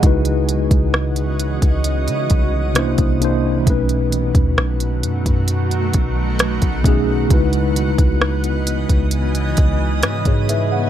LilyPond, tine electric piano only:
\new Staff \with { instrumentName = "Tine electric piano" } { \time 4/4 \key cis \minor \tempo 4 = 66 << { <gis' dis''>16 r2. r8. | r1 | r2. r16 <gis' cis''>16 <b' e''>16 <cis'' fis''>16 | } \\ { <cis gis dis' e' fis' b'>4.~ <cis gis dis' e' fis' b'>16 r4 r16 <c bes d' e' c''>8 <c bes d' e' c''>8 | <b, a cis' dis' b'>4.~ <b, a cis' dis' b'>16 r4. r16 <b, a cis' dis' gis'>8 | <cis gis dis' e' fis' b'>4.~ <cis gis dis' e' fis' b'>16 r2 r16 | } >> }